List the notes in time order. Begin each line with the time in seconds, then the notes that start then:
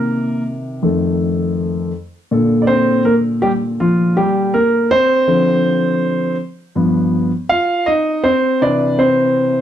Already playing: C3 D#3 A#3 A#4
0.83 F2 D#3 A3
2.31 A#2 D3 A4
2.62 D5
2.67 C4 C5
3.05 A#3 A#4
3.42 G3 G4
3.80 F3 F4
4.17 G3 G4
4.54 A#3 A#4
4.91 C4 C5
5.27 D3 F3 C4
6.75 G2 F3 B3
7.49 F4 F5
7.86 D#4 D#5
8.24 C4 C5
8.62 C3 E3 D4 B4 D5
8.99 C4 C5